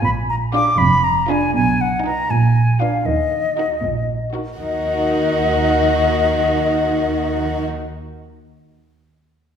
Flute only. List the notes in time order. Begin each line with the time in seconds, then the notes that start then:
0.04 B5
0.29 A#5
0.53 D6
0.78 B5
1.04 A#5
1.30 G#5
1.55 G#5
1.81 F#5
2.06 A#5
2.30 G#5
2.80 F5
3.06 D#5
4.59 D#5